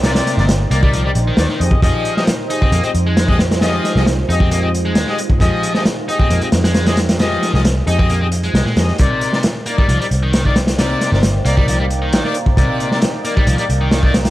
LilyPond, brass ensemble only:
\new Staff \with { instrumentName = "Brass ensemble" } { \time 4/4 \key c \minor \tempo 4 = 134 <ees' bes' d''>8. <ees' bes' d''>16 r8 <ees' bes' d''>8. <ees' bes' d''>16 r8 <ees' bes' d''>16 r16 <g' aes' ees''>8 | <g' aes' ees''>8. <g' aes' ees''>16 r8 <g' aes' ees''>8. <g' aes' ees''>16 r8. <g' aes' ees''>16 r8 | <g' aes' ees''>8. <g' aes' ees''>16 r8 <g' aes' ees''>8. <g' aes' ees''>16 r8. <g' aes' ees''>16 r8 | <g' aes' ees''>8. <g' aes' ees''>16 r8 <g' aes' ees''>8. <g' aes' ees''>16 r8. <g' aes' ees''>16 r8 |
<g' aes' ees''>8. <g' aes' ees''>16 r8 <g' aes' ees''>8. <g' aes' ees''>16 r8 <g' aes' ees''>16 r16 <g' aes' ees''>8 | <ees' bes' d''>8. <ees' bes' d''>16 r8 <ees' bes' d''>8. <ees' bes' d''>16 r8. <ees' bes' d''>16 r8 | <ees' bes' d''>8. <ees' bes' d''>16 r8 <ees' bes' d''>8. <ees' bes' d''>16 r8. <ees' bes' d''>16 r8 | <ees' bes' d''>8. <ees' bes' d''>16 r8 <ees' bes' d''>8. <ees' bes' d''>16 r8. <ees' bes' d''>16 r8 | }